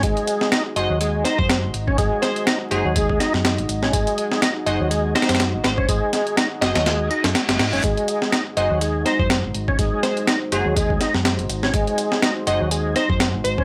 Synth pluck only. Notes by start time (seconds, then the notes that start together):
0.76 D#5
1.25 C5
1.38 C5
2.22 C5
2.71 G#4
4.66 D#5
5.15 C5
5.29 C5
5.64 C5
6.61 D#5
6.75 D#5
8.57 D#5
9.06 C5
9.19 C5
10.03 C5
10.52 G#4
12.47 D#5
12.96 C5
13.09 C5
13.44 C5